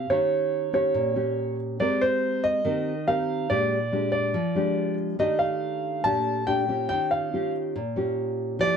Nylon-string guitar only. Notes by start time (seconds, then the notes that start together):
0.10 D#3 C#4 G4
0.73 C#4 G4
0.94 A#2
1.16 C#4 G4
1.80 G#3 C4 G4 A#4
2.65 D#3 C4 G4 A#4
3.07 C4 G4 A#4
3.50 A#2 G#3 D4 G4
3.92 G#3 D4 G4
4.34 F3
4.55 G#3 D4 G4
5.19 D#3 A3 D4 G4
6.05 A#2 A3 D4 G4
6.47 A3 D4 G4
6.68 C#4 F4 G4
6.91 D#3
7.33 C#4 F4 G4
7.75 A#2
7.96 C#4 F4 G4
8.59 F3 A3 E4 G4